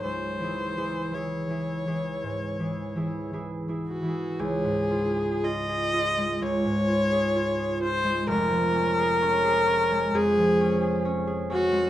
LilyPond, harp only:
\new Staff \with { instrumentName = "Harp" } { \time 4/4 \key cis \minor \tempo 4 = 63 \tuplet 3/2 { <cis, gis'>8 <e e' gis'>8 <e e' gis'>8 <e e' gis'>8 <e e' gis'>8 <e e' gis'>8 gis,8 <e e' gis'>8 <e e' gis'>8 <e e' gis'>8 <e e' gis'>8 <e e' gis'>8 } | \key des \major des,16 aes,16 f'16 aes'16 f'16 aes'16 f'16 aes16 des,16 aes,16 f'16 aes'16 f'16 aes'16 f'16 aes16 | <f,, f,>16 f16 des'16 aes'16 des'16 aes'16 des'16 aes16 f,16 f16 des'16 aes'16 des'16 aes'16 des'16 aes16 | }